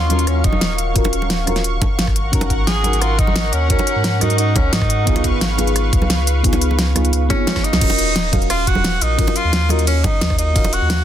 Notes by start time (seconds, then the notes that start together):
Already playing: D#2 F#3 C#4 F4 F#4 A#4 F5 C#6
0.09 C#4 F4 F#4 A#4, closed hi-hat, high conga
0.19 closed hi-hat
0.27 C#4, cross-stick, closed hi-hat
0.44 D#1 D#4, kick, closed hi-hat
0.53 high conga
0.61 snare, closed hi-hat
0.78 closed hi-hat
0.94 D#1 C#4 F4 F#4 A#4, kick, closed hi-hat
1.04 closed hi-hat, muted conga
1.13 closed hi-hat
1.22 muted conga
1.30 snare, closed hi-hat
1.46 D#1 C#4 F4 F#4 A#4, cross-stick, closed hi-hat, high conga
1.56 snare, closed hi-hat
1.64 closed hi-hat
1.82 kick, closed hi-hat, muted conga
1.99 G#1, snare, closed hi-hat
2.07 kick, cross-stick
2.16 A#4 F#5, closed hi-hat
2.32 G#1 C#4 D#4 F#4 A#4, kick, closed hi-hat
2.41 closed hi-hat, muted conga
2.50 kick, closed hi-hat
2.67 G#4, snare, closed hi-hat
2.83 C#4 D#4 F#4 A#4, closed hi-hat, high conga
2.93 closed hi-hat
3.01 F4, cross-stick, closed hi-hat
3.19 D#4, kick, closed hi-hat
3.27 high conga
3.36 snare, closed hi-hat
3.53 D#2 C#4, closed hi-hat
3.69 C#4 D#4 F#4 A#4, kick, closed hi-hat
3.79 closed hi-hat, muted conga
3.87 closed hi-hat
3.96 G#2
4.04 snare, closed hi-hat
4.20 C#4 D#4 F#4 A#4, cross-stick, closed hi-hat, high conga
4.30 closed hi-hat
4.38 D#4, closed hi-hat
4.56 C#2 C#4, kick, closed hi-hat, muted conga
4.73 G#2 D#4, snare, closed hi-hat
4.82 kick, cross-stick
4.90 closed hi-hat
5.05 C#2 B3 D#4 F4 G#4 B4 F5 C#6, kick, closed hi-hat
5.16 closed hi-hat, muted conga
5.24 kick, closed hi-hat
5.33 G#1
5.41 snare, closed hi-hat
5.57 B3 D#4 F4 G#4, closed hi-hat, high conga
5.67 closed hi-hat
5.76 cross-stick, closed hi-hat
5.93 C#2, kick, closed hi-hat
6.02 high conga
6.10 snare, closed hi-hat
6.27 closed hi-hat
6.43 C#2 B3 D#4 F4 G#4, kick, closed hi-hat
6.53 closed hi-hat, muted conga
6.62 closed hi-hat
6.71 muted conga
6.79 snare, closed hi-hat
6.95 C#2 B3 D#4 F4 G#4, cross-stick, closed hi-hat, high conga
7.05 closed hi-hat
7.13 closed hi-hat
7.29 B3 C#4 D#4 F4 G#4, kick, closed hi-hat, high tom, muted conga
7.47 snare, closed hi-hat, mid tom
7.56 kick, cross-stick, snare
7.64 D#4, closed hi-hat
7.73 C#2, snare, closed hi-hat, high conga
7.80 D#1 C#4 F4 F#4 A#4, kick, closed hi-hat, ride, crash
7.90 closed hi-hat, muted conga
7.99 closed hi-hat
8.16 snare, closed hi-hat
8.31 C#4 F#4 A#4 F5, kick, closed hi-hat, high conga
8.42 closed hi-hat
8.50 F4, cross-stick, closed hi-hat, ride
8.67 F#4, kick, closed hi-hat
8.75 high conga
8.84 snare, closed hi-hat, ride
9.01 A#1 D#4, closed hi-hat
9.17 F#3 C#4 F4 A#4, kick, closed hi-hat, ride
9.27 closed hi-hat, muted conga
9.36 F4, closed hi-hat
9.44 D#2
9.53 snare, closed hi-hat, ride
9.68 C#4 D#4 F4 F#4 A#4, cross-stick, closed hi-hat, high conga
9.79 closed hi-hat
9.87 C#4, closed hi-hat, ride
10.04 F#1 D#4, kick, closed hi-hat, muted conga
10.21 D#2, snare, closed hi-hat, ride
10.30 kick, cross-stick
10.39 D#4, closed hi-hat
10.54 D#1 C#4 F#4 A#4 F5, kick, closed hi-hat, ride
10.64 closed hi-hat, muted conga
10.73 F#4, closed hi-hat
10.81 D#2
10.90 snare, closed hi-hat, ride